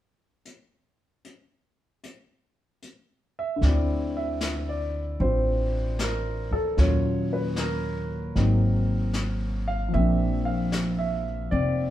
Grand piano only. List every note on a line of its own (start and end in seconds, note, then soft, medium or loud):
3.39 3.64 E5 medium
3.56 6.75 D3 soft
3.64 5.18 C4 soft
3.64 6.81 E4 soft
3.64 4.12 D5 medium
4.17 4.65 E5 medium
4.69 5.17 D5 medium
5.20 6.78 C4 soft
5.20 6.78 D4 soft
5.20 6.78 F4 soft
5.20 5.96 C5 medium
6.00 6.54 A#4 medium
6.53 6.76 A4 medium
6.77 8.36 A#2 soft
6.77 8.34 F#3 soft
6.77 8.36 C#4 soft
6.77 8.36 F4 medium
6.77 7.33 C#5 medium
7.33 7.56 B4 medium
7.59 9.64 A#4 medium
8.35 9.93 F#3 soft
8.35 9.91 A#3 soft
8.35 9.94 C4 soft
8.35 9.94 D#4 medium
9.68 9.92 F5 medium
9.88 11.90 F3 soft
9.88 11.90 A#3 soft
9.94 11.51 C4 soft
9.94 10.42 E5 medium
10.00 11.90 D4 medium
10.45 10.94 F5 medium
10.99 11.47 E5 medium
11.51 11.90 C4 soft
11.51 11.90 D5 medium